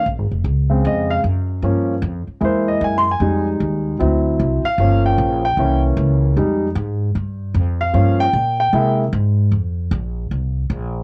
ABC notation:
X:1
M:4/4
L:1/8
Q:"Swing" 1/4=152
K:Fm
V:1 name="Grand piano"
z4 e f z2 | z4 c ^d (3^g c' g- | ^g z6 f- | f g2 g2 z3 |
z6 z f- | f g2 g2 z3 | z8 |]
V:2 name="Grand piano"
z3 [D,A,C]3 z2 | [F,B,D] z3 [^G,^A,=E]3 z | [G,A,E]4 [^F,C=E]3 z | [F,B,D]3 z [=E,B,D]4 |
[G,A,E] z6 z | [F,B,D] z3 [A,B,=E] z3 | z8 |]
V:3 name="Upright bass" clef=bass
(3B,,, A,,, F,,, D,,2 F,,2 _G,,2 | G,,2 F,, z =E,,2 ^F,,2 | F,,2 E,,2 =D,,2 C,, z | G,,,2 B,,,2 C,,2 D,,2 |
F,,2 A,,2 G,,2 F,,2 | G,,2 B,,2 C,2 A,,2 | F,,2 B,,,2 C,,2 B,,,2 |]